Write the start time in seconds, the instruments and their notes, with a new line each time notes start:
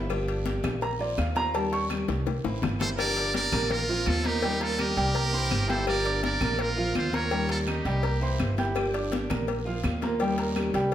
Already playing: upright bass G1
0.10 steel-string acoustic guitar D3 F3 A#3 D4 G4, cowbell, high conga, long guiro, claves
0.28 cowbell, high conga
0.46 steel-string acoustic guitar F3 A#3 D4 G4, cowbell, high conga, short guiro
0.63 upright bass A#1, cowbell, high conga, low conga, short guiro, claves
0.81 grand piano A#5, muted steel-string acoustic guitar stroke, cowbell, high conga, long guiro
0.99 steel-string acoustic guitar A#3 C4 F4, grand piano D5, high conga
1.17 upright bass D#2, steel-string acoustic guitar D3 A#3 C4 F4, grand piano F5, cowbell, high conga, short guiro, claves
1.35 steel-string acoustic guitar A#3 C4 F4, grand piano A#5, cowbell, high conga, short guiro
1.54 steel-string acoustic guitar D#3 G3 C#4 G4, grand piano A5, cowbell, high conga, long guiro
1.72 grand piano C#6, cowbell, high conga
1.89 steel-string acoustic guitar D#3 G3 C#4 G4, cowbell, high conga, short guiro, claves
2.08 upright bass C2, cowbell, high bongo, high conga, short guiro
2.26 muted steel-string acoustic guitar stroke, cowbell, high bongo, high conga, long guiro
2.44 upright bass A1, steel-string acoustic guitar E3 A#3 C4 E4, high bongo, high conga
2.62 upright bass G1, steel-string acoustic guitar E3 A#3 C4 E4, cowbell, low bongo, high conga, short guiro, claves
2.79 steel-string acoustic guitar E3 A#3 C4 E4, trumpet A4, muted trumpet C5, cowbell, low bongo, high conga, short guiro
2.97 steel-string acoustic guitar D3 F3 A#3 D4 G4, trumpet A#4, muted trumpet D5, cowbell, high conga, claves
3.16 grand piano D4 D5 D6, cowbell, high conga
3.33 steel-string acoustic guitar F3 A#3 D4 G4, trumpet A#4, muted trumpet D5, cowbell, high conga, short guiro
3.52 upright bass A#1, grand piano A#3 A#4 A#5, cowbell, high conga, low conga, short guiro, claves
3.70 trumpet F4, muted trumpet A#4, muted steel-string acoustic guitar stroke, cowbell, high conga, low conga, long guiro
3.88 grand piano F3 F4 F5, steel-string acoustic guitar A#3 C4 F4, high conga
4.05 upright bass D#2, steel-string acoustic guitar D3 A#3 C4 F4, trumpet F4, muted trumpet A4, cowbell, high conga, short guiro, claves
4.24 grand piano A#3 A#4 A#5, steel-string acoustic guitar A#3 C4 F4, trumpet D#4, muted trumpet G4, cowbell, high conga, short guiro
4.42 steel-string acoustic guitar D#3 G3 C#4 G4, grand piano G3 G4 G5, cowbell, high conga
4.60 grand piano A#3 A#4 A#5, trumpet F4, muted trumpet A4, cowbell, high conga
4.78 steel-string acoustic guitar D#3 G3 C#4 G4, trumpet G4, muted trumpet A#4, cowbell, high conga, short guiro, claves
4.96 upright bass C2, grand piano G3 G4 G5, cowbell, high conga, short guiro
5.15 grand piano A#3 A#4 A#5, muted steel-string acoustic guitar stroke, cowbell, high conga
5.32 steel-string acoustic guitar E3 A#3 C4 E4, grand piano C4 C5 C6, high conga
5.50 upright bass G1, steel-string acoustic guitar E3 A#3 C4 E4, cowbell, high conga, short guiro, claves
5.68 steel-string acoustic guitar E3 A#3 C4 E4, grand piano G4 G5 G6, trumpet A4, muted trumpet C5, cowbell, high conga, short guiro
5.86 steel-string acoustic guitar D3 F3 A#3 D4 G4, trumpet A#4, muted trumpet D5, cowbell, high conga, long guiro, claves
6.05 grand piano D4 D5 D6, cowbell, high conga
6.22 steel-string acoustic guitar F3 A#3 G4, trumpet A#4, muted trumpet D5, cowbell, high conga, short guiro
6.41 upright bass A#1, grand piano A#3 A#4 A#5, cowbell, high conga, low conga, short guiro, claves
6.58 trumpet F4, muted trumpet A#4, muted steel-string acoustic guitar stroke, cowbell, high conga, long guiro
6.76 grand piano F3 F4 F5, steel-string acoustic guitar A#3 C4 F4, high conga
6.94 upright bass D#2, steel-string acoustic guitar D3 A#3 C4 F4, trumpet F4, cowbell, high conga, short guiro, claves
6.98 muted trumpet C5
7.11 steel-string acoustic guitar A#3 C4 F4, grand piano A#3 A#4 A#5, trumpet A#4, cowbell, high conga, short guiro
7.16 muted trumpet C#5
7.30 steel-string acoustic guitar D#3 G3 C#4 G4, grand piano G3 G4 G5, cowbell, high conga, long guiro
7.49 grand piano A#3 A#4 A#5, trumpet F4, muted trumpet A4, cowbell, high conga
7.66 steel-string acoustic guitar D#3 G3 C#4 G4, trumpet D#4, cowbell, high conga, short guiro, claves
7.70 muted trumpet G4
7.85 upright bass C2, grand piano G3 G4 G5, cowbell, high conga, short guiro
8.03 grand piano A#3 A#4 A#5, muted steel-string acoustic guitar stroke, cowbell, high conga, long guiro
8.21 steel-string acoustic guitar E3 A#3 C4 E4, grand piano C4 C5 C6, high conga
8.38 upright bass G1, steel-string acoustic guitar E3 A#3 C4 E4, cowbell, high conga, short guiro, claves
8.57 steel-string acoustic guitar E3 A#3 C4 E4, grand piano G4 G5 G6, cowbell, high conga, short guiro
8.75 steel-string acoustic guitar D3 F3 A#3 D4 G4, cowbell, high conga, long guiro, claves
8.94 grand piano D4 D5 D6, cowbell, high conga
9.11 steel-string acoustic guitar F3 A#3 D4 G4, cowbell, high conga, short guiro
9.30 upright bass A#1, grand piano A#3 A#4 A#5, cowbell, high conga, low conga, short guiro, claves
9.47 muted steel-string acoustic guitar stroke, cowbell, high conga, long guiro
9.65 grand piano F3 F4 F5, steel-string acoustic guitar A#3 C4 F4, high conga
9.83 upright bass D#2, steel-string acoustic guitar D3 A#3 C4 F4, cowbell, high conga, short guiro, claves
10.02 grand piano A#3 A#4 A#5, steel-string acoustic guitar A#3 C4 F4, cowbell, high conga, short guiro
10.19 steel-string acoustic guitar D#3 G3 C#4 G4, grand piano G3 G4 G5, cowbell, high conga, long guiro
10.38 grand piano A#3 A#4 A#5, cowbell, high conga
10.55 steel-string acoustic guitar D#3 G3 C#4 G4, cowbell, high conga, short guiro, claves
10.74 upright bass C2, grand piano G3 G4 G5, cowbell, high conga, short guiro
10.91 muted steel-string acoustic guitar stroke